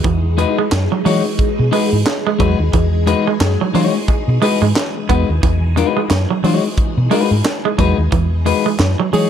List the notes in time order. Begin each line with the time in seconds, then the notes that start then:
Already playing: E3 G#3 D#4
0.04 E2 E3 G#4, kick, closed hi-hat
0.37 G#3 D#4 F#4 B4, muted clean electric guitar stroke, closed hi-hat
0.58 G#3
0.71 F#2, muted clean electric guitar stroke, snare, clap, closed hi-hat
0.91 F#3, muted clean electric guitar stroke
1.05 E3 F#3 G#3 D#4 F#4 C#5, open hi-hat
1.25 muted clean electric guitar stroke
1.38 muted clean electric guitar stroke, kick, closed hi-hat
1.59 B2, muted clean electric guitar stroke
1.71 G#3 D#4 F#4 B4, open hi-hat
1.92 G#2, muted clean electric guitar stroke
2.05 muted clean electric guitar stroke, snare, clap, closed hi-hat
2.26 G#3, muted clean electric guitar stroke
2.38 E2 F#3 G#3 D#4 F#4 B4, kick, closed hi-hat
2.59 D#2, muted clean electric guitar stroke
2.73 E2 E3, kick, closed hi-hat
3.06 G#3 D#4 F#4 B4, muted clean electric guitar stroke, closed hi-hat
3.27 G#3
3.40 F#2, muted clean electric guitar stroke, snare, clap, closed hi-hat
3.61 F#3, muted clean electric guitar stroke
3.74 E3 F#3 G#3 D#4 F#4 C#5, open hi-hat
3.95 muted clean electric guitar stroke
4.08 muted clean electric guitar stroke, kick, closed hi-hat
4.28 B2, muted clean electric guitar stroke
4.42 G#3 D#4 F#4 B4, open hi-hat
4.62 G#2 G#3, muted clean electric guitar stroke
4.75 muted clean electric guitar stroke, snare, clap, closed hi-hat
4.96 muted clean electric guitar stroke
5.09 E2 G#3 B3 D#4 F#4 B4, kick, closed hi-hat
5.29 D#2, muted clean electric guitar stroke
5.43 E2 E3, kick, closed hi-hat
5.76 G#3 D#4 F#4 B4, muted clean electric guitar stroke, closed hi-hat
5.97 G#3
6.10 F#2, muted clean electric guitar stroke, snare, clap, closed hi-hat
6.30 F#3, muted clean electric guitar stroke
6.43 E3 F#3 G#3 D#4 F#4 C#5, open hi-hat
6.64 muted clean electric guitar stroke
6.77 muted clean electric guitar stroke, kick, closed hi-hat
6.97 B2, muted clean electric guitar stroke
7.11 G#3 D#4 F#4 B4, open hi-hat
7.31 G#2, muted clean electric guitar stroke
7.45 muted clean electric guitar stroke, snare, clap, closed hi-hat
7.65 G#3, muted clean electric guitar stroke
7.78 E2 F#3 G#3 D#4 F#4 B4, kick, closed hi-hat
7.98 D#2, muted clean electric guitar stroke
8.12 E2 E3, kick, closed hi-hat
8.45 G#3 D#4 F#4 B4, muted clean electric guitar stroke, open hi-hat
8.66 G#3
8.79 F#2, muted clean electric guitar stroke, snare, clap, closed hi-hat
8.99 F#3, muted clean electric guitar stroke
9.13 E3 F#3 G#3 D#4 F#4 G#4 C#5, open hi-hat